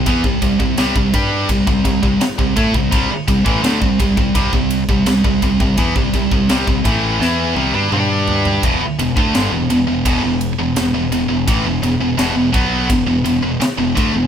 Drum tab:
RD |x-x-x-x-x-x-x-x-|x-x-x-x-x-x-x-x-|x-x-x-x---------|x-x-x-x-x-x-x-x-|
SD |----o-------o---|----o-------o---|----o---o-------|----o-------o---|
T1 |----------------|----------------|----------oo----|----------------|
T2 |----------------|----------------|------------o---|----------------|
FT |----------------|----------------|--------------oo|----------------|
BD |oooo-oo-oooo-ooo|o-oo-ooooo-o-ooo|oooo-oo---------|o--o----o-------|

RD |x-x-x-x-x-x-x-x-|
SD |----o-------o---|
T1 |----------------|
T2 |----------------|
FT |----------------|
BD |o-----o-o-----o-|